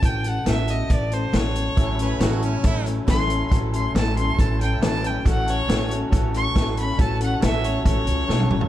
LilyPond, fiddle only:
\new Staff \with { instrumentName = "Fiddle" } { \time 4/4 \key fis \minor \tempo 4 = 138 g''8 fis''8 e''8 dis''8 d''8 c''8 cis''4~ | cis''4 r2 c'''4 | r8 c'''8 a''8 c'''8 a''8 g''8 a''8 g''8 | fis''8 cis''4 r4 cis'''4 b''8 |
a''8 fis''8 e''8 cis''8 cis''2 | }